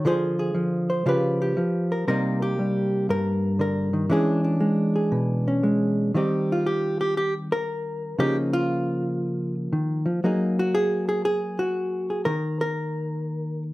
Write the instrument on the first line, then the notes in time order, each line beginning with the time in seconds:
hollow-body jazz guitar
0.05 D3 F3 F4 G#4 C5
0.39 G#4
0.54 F3
0.90 C5
1.06 C#3 F3 F4 G4 B4
1.42 G4
1.57 F3
1.92 A#4
2.08 C3 G3 A#3 D#4 A#4
2.42 G4
2.59 G3
3.09 G2 A#4
3.59 D3 A#4
3.93 D#3
4.09 E3 G#3 C#4 D4 G#4
4.44 D4
4.60 G#3
4.96 G#4
5.12 B2
5.48 C#4
5.63 G#3
6.14 D#3 G3 C4 D#4 G4
6.52 F4
6.66 G4
7.01 G4
7.17 G4
7.52 A#4
8.19 C#3 F3 A#3 D#4 G4
8.53 F4
9.73 D#3
10.06 F3
10.24 F#3 A#3 D#4 G#4
10.59 F#4
10.75 G#4
11.09 G#4
11.25 G#4
11.59 F#4
12.10 G#4
12.25 D#3 A#4
12.61 A#4